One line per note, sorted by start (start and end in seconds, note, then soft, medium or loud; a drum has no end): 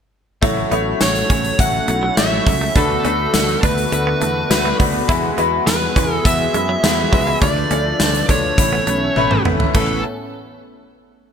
0.42 0.64 A1 medium
0.42 2.72 F#3 medium
0.42 0.69 A3 loud
0.42 0.51 A3 medium
0.42 2.74 A3 medium
0.42 2.74 C#4 medium
0.42 0.70 E4 loud
0.42 2.72 E4 medium
0.42 0.70 F#4 loud
0.42 7.38 F#4 medium
0.42 2.72 A4 medium
0.42 0.70 C#5 loud
0.42 kick loud
0.42 closed hi-hat medium
0.57 muted clean electric guitar stroke soft
0.71 0.93 A1 medium
0.71 0.99 A3 loud
0.71 0.80 B3 medium
0.71 0.99 E4 loud
0.71 0.99 F#4 loud
0.71 0.99 C#5 loud
0.71 closed hi-hat medium
1.00 1.22 A1 medium
1.00 1.28 A3 medium
1.00 1.28 E4 medium
1.00 1.28 F#4 medium
1.00 1.28 C#5 medium
1.00 1.62 C#5 loud
1.00 1.56 C#6 medium
1.00 snare medium
1.00 closed hi-hat medium
1.00 tambourine medium
1.15 closed hi-hat medium
1.29 1.51 A1 medium
1.29 1.57 A3 medium
1.29 1.39 C#4 medium
1.29 1.57 E4 medium
1.29 1.57 F#4 medium
1.29 1.58 C#5 medium
1.29 kick medium
1.29 closed hi-hat medium
1.44 closed hi-hat medium
1.59 1.80 A1 loud
1.59 1.86 A3 medium
1.59 1.86 E4 medium
1.59 1.87 F#4 medium
1.59 1.87 C#5 medium
1.59 2.14 F#5 loud
1.59 2.14 F#6 medium
1.59 muted clean electric guitar stroke soft
1.59 kick loud
1.59 closed hi-hat medium
1.88 2.09 B1 medium
1.88 2.15 A3 medium
1.88 1.97 A3 medium
1.88 2.15 E4 medium
1.88 2.16 F#4 medium
1.88 2.16 C#5 medium
1.88 closed hi-hat medium
2.03 2.11 F#3 medium
2.17 2.38 A1 medium
2.17 2.44 A3 medium
2.17 2.45 E4 medium
2.17 2.45 F#4 medium
2.17 2.45 C#5 loud
2.17 2.78 E5 loud
2.17 2.72 E6 medium
2.17 muted clean electric guitar stroke soft
2.17 snare loud
2.17 closed hi-hat loud
2.17 tambourine medium
2.46 2.67 C#2 medium
2.46 2.55 F#3 medium
2.46 2.73 A3 medium
2.46 2.74 E4 medium
2.46 2.74 F#4 medium
2.46 2.74 C#5 medium
2.46 kick medium
2.46 open hi-hat medium
2.61 2.70 A3 medium
2.75 2.97 D2 loud
2.75 5.06 D3 medium
2.75 5.05 D3 medium
2.75 3.03 A3 medium
2.75 5.07 A3 medium
2.75 7.38 B3 medium
2.75 5.05 B3 medium
2.75 3.03 D4 medium
2.75 2.84 D4 medium
2.75 3.03 F#4 medium
2.75 5.05 F#4 medium
2.75 3.60 A4 medium
2.75 3.03 B4 loud
2.75 3.60 A5 medium
2.75 kick loud
2.75 closed hi-hat medium
2.90 muted clean electric guitar stroke soft
3.04 3.26 D2 loud
3.04 3.31 A3 loud
3.04 3.13 C#4 medium
3.04 3.32 D4 medium
3.04 3.32 F#4 medium
3.04 3.32 B4 loud
3.04 closed hi-hat medium
3.33 3.55 D2 loud
3.33 3.61 A3 medium
3.33 3.61 D4 medium
3.33 3.61 F#4 medium
3.33 3.61 B4 medium
3.33 snare loud
3.33 closed hi-hat medium
3.33 tambourine medium
3.49 closed hi-hat soft
3.62 3.84 D2 medium
3.62 3.90 A3 medium
3.62 3.90 D4 medium
3.62 3.72 D4 medium
3.62 3.90 F#4 medium
3.62 3.90 B4 medium
3.62 3.91 B4 medium
3.62 3.91 B5 medium
3.62 kick medium
3.62 closed hi-hat medium
3.78 closed hi-hat medium
3.92 4.13 D2 loud
3.92 4.19 A3 medium
3.92 4.19 D4 medium
3.92 4.19 F#4 medium
3.92 4.20 A4 medium
3.92 4.76 B4 medium
3.92 4.76 B5 medium
3.92 muted clean electric guitar stroke soft
3.92 closed hi-hat medium
4.07 4.15 B3 medium
4.20 4.42 E2 medium
4.20 4.48 A3 medium
4.20 4.30 A3 medium
4.20 4.48 D4 medium
4.20 4.49 F#4 medium
4.20 4.49 B4 medium
4.20 closed hi-hat medium
4.49 4.71 D2 loud
4.49 4.77 A3 loud
4.49 4.77 D4 medium
4.49 4.77 F#4 medium
4.49 4.78 B4 loud
4.49 muted clean electric guitar stroke soft
4.49 snare loud
4.49 closed hi-hat medium
4.49 tambourine medium
4.65 4.74 A3 medium
4.79 5.01 D2 medium
4.79 5.06 A3 medium
4.79 4.88 B3 medium
4.79 5.07 D4 medium
4.79 5.07 F#4 medium
4.79 5.07 B4 loud
4.79 kick loud
4.79 open hi-hat medium
5.08 5.30 E2 loud
5.08 7.38 E3 medium
5.08 7.40 E3 medium
5.08 5.36 G#3 loud
5.08 7.38 B3 medium
5.08 5.36 E4 loud
5.08 5.17 E4 loud
5.08 5.36 F#4 loud
5.08 7.40 G#4 medium
5.08 7.38 G#4 medium
5.08 5.36 B4 loud
5.08 kick loud
5.08 closed hi-hat medium
5.24 muted clean electric guitar stroke soft
5.37 5.59 E2 medium
5.37 5.65 G#3 loud
5.37 5.46 B3 medium
5.37 5.65 E4 loud
5.37 5.65 F#4 loud
5.37 5.65 B4 loud
5.37 closed hi-hat medium
5.67 5.88 E2 medium
5.67 5.94 G#3 medium
5.67 5.94 E4 medium
5.67 5.94 F#4 medium
5.67 6.13 B4 medium
5.67 5.95 B4 medium
5.67 6.09 B5 medium
5.67 snare loud
5.67 closed hi-hat medium
5.67 tambourine medium
5.96 6.17 E2 medium
5.96 6.23 G#3 medium
5.96 6.05 C#4 medium
5.96 6.23 E4 medium
5.96 6.23 F#4 medium
5.96 6.24 B4 medium
5.96 kick medium
5.96 closed hi-hat medium
6.09 6.27 A4 medium
6.09 6.21 A5 medium
6.25 6.46 E2 loud
6.25 6.52 G#3 medium
6.25 6.52 E4 medium
6.25 6.52 F#4 medium
6.25 6.53 B4 medium
6.25 7.38 E5 loud
6.25 7.38 E6 loud
6.25 muted clean electric guitar stroke soft
6.25 kick loud
6.25 closed hi-hat medium
6.54 6.75 F#2 medium
6.54 6.81 G#3 medium
6.54 6.63 G#3 medium
6.54 6.82 E4 medium
6.54 6.82 F#4 medium
6.54 6.82 B4 medium
6.54 closed hi-hat medium
6.69 6.77 F#3 medium
6.83 7.04 E2 loud
6.83 7.10 G#3 loud
6.83 7.11 E4 medium
6.83 7.11 F#4 medium
6.83 7.11 B4 loud
6.83 muted clean electric guitar stroke soft
6.83 snare loud
6.83 closed hi-hat loud
6.83 tambourine medium
7.12 7.34 C#2 medium
7.12 7.21 F#3 medium
7.12 7.40 G#3 medium
7.12 7.40 E4 medium
7.12 7.40 F#4 medium
7.12 7.40 B4 loud
7.12 kick medium
7.12 open hi-hat medium
7.27 7.36 G#3 medium
7.42 7.63 D2 loud
7.42 8.57 D3 medium
7.42 8.56 F3 medium
7.42 7.69 A3 medium
7.42 7.50 D4 medium
7.42 8.56 D4 medium
7.42 7.69 D4 medium
7.42 8.57 D4 medium
7.42 8.57 F4 medium
7.42 7.69 F4 medium
7.42 8.57 A4 medium
7.42 8.56 B4 medium
7.42 8.25 D5 loud
7.42 7.69 D5 loud
7.42 8.25 D6 medium
7.42 kick loud
7.42 closed hi-hat medium
7.56 muted clean electric guitar stroke soft
7.70 7.92 D2 medium
7.70 7.98 A3 medium
7.70 7.79 C#4 medium
7.70 7.98 D4 medium
7.70 7.98 F4 medium
7.70 7.98 D5 loud
7.70 closed hi-hat medium
8.00 8.21 D2 loud
8.00 8.27 A3 medium
8.00 8.27 D4 medium
8.00 8.27 F4 medium
8.00 8.28 D5 medium
8.00 snare loud
8.00 closed hi-hat medium
8.00 tambourine medium
8.14 closed hi-hat medium
8.29 8.50 D2 medium
8.29 8.56 A3 medium
8.29 8.37 D4 medium
8.29 8.56 D4 medium
8.29 8.56 F4 medium
8.29 9.42 C#5 medium
8.29 8.57 D5 medium
8.29 9.42 C#6 medium
8.29 kick medium
8.29 closed hi-hat medium
8.58 8.79 A1 loud
8.58 9.72 E3 medium
8.58 8.85 A3 medium
8.58 9.74 A3 medium
8.58 9.74 B3 medium
8.58 9.73 C#4 medium
8.58 9.72 C#4 medium
8.58 8.85 C#4 medium
8.58 8.86 E4 medium
8.58 9.72 A4 medium
8.58 8.86 B4 medium
8.58 muted clean electric guitar stroke soft
8.58 kick loud
8.58 closed hi-hat medium
8.73 8.81 B3 medium
8.87 9.08 B1 medium
8.87 9.14 A3 medium
8.87 8.96 A3 medium
8.87 9.14 C#4 medium
8.87 9.15 E4 medium
8.87 9.15 B4 medium
8.87 closed hi-hat medium
9.16 9.37 A1 loud
9.16 9.43 A3 loud
9.16 9.44 C#4 loud
9.16 9.44 E4 loud
9.16 9.44 B4 loud
9.16 muted clean electric guitar stroke soft
9.16 high tom medium
9.31 9.39 A3 medium
9.31 mid tom medium
9.45 9.67 G#1 medium
9.45 9.73 A3 medium
9.45 9.54 B3 medium
9.45 9.73 C#4 medium
9.45 9.73 E4 medium
9.45 9.73 B4 loud
9.45 mid tom loud
9.60 floor tom loud
9.75 10.02 A1 loud
9.75 10.02 A2 medium
9.75 10.02 E3 medium
9.75 9.92 A3 medium
9.75 10.02 A3 medium
9.75 10.02 B3 medium
9.75 10.02 C#4 medium
9.75 10.02 E4 medium
9.75 10.02 A4 medium
9.75 10.02 B4 medium
9.75 10.02 A5 medium
9.75 kick loud
9.75 crash medium